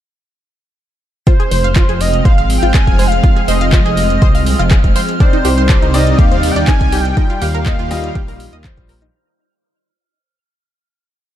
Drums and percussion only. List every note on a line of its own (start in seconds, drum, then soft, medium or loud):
1.27 kick loud
1.27 closed hi-hat medium
1.40 closed hi-hat soft
1.51 open hi-hat loud
1.64 closed hi-hat soft
1.76 kick loud
1.76 clap loud
1.76 closed hi-hat medium
1.89 closed hi-hat soft
2.01 open hi-hat loud
2.14 closed hi-hat soft
2.25 kick loud
2.25 closed hi-hat medium
2.38 closed hi-hat soft
2.50 open hi-hat loud
2.63 closed hi-hat soft
2.74 kick loud
2.74 clap loud
2.74 closed hi-hat medium
2.87 kick medium
2.87 closed hi-hat soft
2.99 open hi-hat loud
3.12 closed hi-hat soft
3.24 kick loud
3.24 closed hi-hat medium
3.36 closed hi-hat soft
3.48 open hi-hat loud
3.61 closed hi-hat soft
3.72 kick loud
3.72 clap loud
3.72 closed hi-hat medium
3.86 closed hi-hat soft
3.97 open hi-hat loud
4.10 closed hi-hat soft
4.22 kick loud
4.22 closed hi-hat medium
4.35 open hi-hat medium
4.46 open hi-hat loud
4.59 closed hi-hat soft
4.71 kick loud
4.71 clap loud
4.71 closed hi-hat medium
4.84 kick medium
4.84 closed hi-hat soft
4.96 open hi-hat loud
5.09 closed hi-hat soft
5.20 kick loud
5.20 closed hi-hat medium
5.33 closed hi-hat soft
5.45 open hi-hat loud
5.58 closed hi-hat soft
5.69 kick loud
5.69 clap loud
5.69 closed hi-hat medium
5.82 closed hi-hat soft
5.94 open hi-hat loud
6.07 closed hi-hat soft
6.19 kick loud
6.19 closed hi-hat medium
6.32 closed hi-hat soft
6.43 open hi-hat loud
6.56 closed hi-hat soft
6.67 kick loud
6.67 clap loud
6.67 closed hi-hat medium
6.81 kick medium
6.81 closed hi-hat soft
6.92 open hi-hat loud
7.05 closed hi-hat soft
7.17 kick loud
7.17 closed hi-hat medium
7.30 closed hi-hat soft
7.42 open hi-hat loud
7.54 closed hi-hat soft
7.66 kick loud
7.66 clap loud
7.66 closed hi-hat medium
7.79 closed hi-hat soft
7.91 open hi-hat loud
8.04 closed hi-hat soft
8.15 kick loud
8.15 closed hi-hat medium
8.28 open hi-hat medium
8.40 open hi-hat loud
8.64 kick loud
8.64 clap loud
8.64 closed hi-hat medium
8.77 kick medium
8.77 closed hi-hat soft
8.89 open hi-hat loud
9.02 closed hi-hat soft